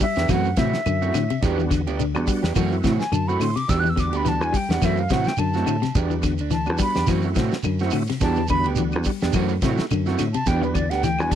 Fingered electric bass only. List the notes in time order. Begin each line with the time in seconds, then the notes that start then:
0.17 E2
0.29 F#2
0.57 A2
0.74 muted fingered electric bass stroke
0.86 F#2
1.14 A2
1.31 muted fingered electric bass stroke
1.43 E2
1.87 D2
2.16 E2
2.43 E2
2.56 F#2
2.84 A2
2.99 muted fingered electric bass stroke
3.12 F#2
3.40 A2
3.56 muted fingered electric bass stroke
3.69 E2
4.12 D2
4.41 E2
4.69 E2
4.83 F#2
5.11 A2
5.26 muted fingered electric bass stroke
5.39 F#2
5.68 A2
5.84 muted fingered electric bass stroke
5.96 E2
6.40 D2
6.70 E2
6.97 E2
7.08 F#2
7.36 A2
7.53 muted fingered electric bass stroke
7.66 F#2
7.93 A2
8.11 muted fingered electric bass stroke
8.22 E2
8.66 D2
8.96 E2
9.23 E2
9.34 F#2
9.62 A2
9.80 muted fingered electric bass stroke
9.92 F#2
10.21 A2
10.36 muted fingered electric bass stroke
10.47 E2
10.91 D2
11.20 E2